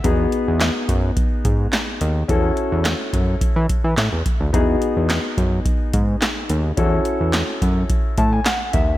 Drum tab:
HH |xxxxxxxx|xxxxxxxx|xxxxxxxx|xxxxxxxx|
CP |--x---x-|--x---x-|--x---x-|--x---x-|
SD |--o---o-|--o---o-|--o---o-|--o---o-|
BD |o--ooo--|o--ooo-o|o--ooo--|o--ooo-o|